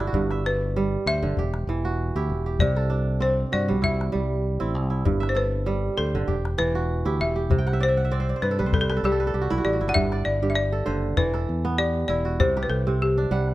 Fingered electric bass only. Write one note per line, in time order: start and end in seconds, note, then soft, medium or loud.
0.00 0.12 G1 medium
0.13 0.96 G1 medium
1.06 1.24 D2 medium
1.23 1.35 G1 medium
1.37 1.64 E1 medium
1.67 2.10 E1 medium
2.15 2.31 D2 medium
2.29 2.57 E1 medium
2.61 3.43 C2 loud
3.54 3.72 G2 medium
3.71 4.10 C2 medium
4.15 4.57 C2 medium
4.62 4.75 A1 medium
4.75 5.02 C2 medium
5.06 5.88 G1 medium
5.98 6.16 D2 medium
6.15 6.27 G1 medium
6.28 6.55 E1 medium
6.60 7.02 E1 medium
7.06 7.21 D2 medium
7.20 7.47 E1 medium
7.50 8.33 C2 medium
8.42 8.61 G2 medium
8.60 8.99 C2 medium
9.03 9.31 C2 medium
9.34 9.49 C2 medium
9.52 9.64 B1 medium
9.65 9.80 A1 medium
9.81 9.94 G1 medium
9.96 10.23 G1 medium
10.26 10.81 G1 medium
10.87 11.15 F#1 medium
11.18 11.45 E1 medium
11.49 12.03 E2 medium
12.09 12.36 E1 medium
12.40 12.67 C2 medium
12.70 13.25 C2 medium
13.31 13.54 C2 medium